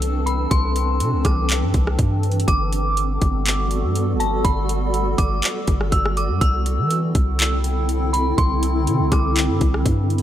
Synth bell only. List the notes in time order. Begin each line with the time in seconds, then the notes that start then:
Already playing: E6
0.26 B5
0.51 C6
1.25 D6
2.48 D6
4.20 A5
4.44 B5
5.18 D6
5.92 E6
6.17 D6
6.41 E6
8.13 B5
8.38 C6
9.12 D6